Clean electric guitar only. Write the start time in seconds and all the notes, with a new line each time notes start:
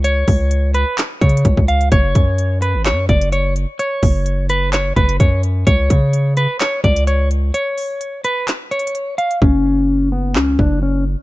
0.04 C#5
0.75 B4
1.21 C#5
1.68 F5
1.92 C#5
2.62 B4
2.86 C#5
3.09 D5
3.33 C#5
3.79 C#5
4.50 B4
4.73 C#5
4.96 B4
5.20 C#5
5.67 C#5
6.37 B4
6.61 C#5
6.84 D5
7.07 C#5
7.54 C#5
8.25 B4
8.71 C#5
9.18 F5
9.42 C#4
10.12 B3
10.36 C#4
10.59 D4
10.83 C#4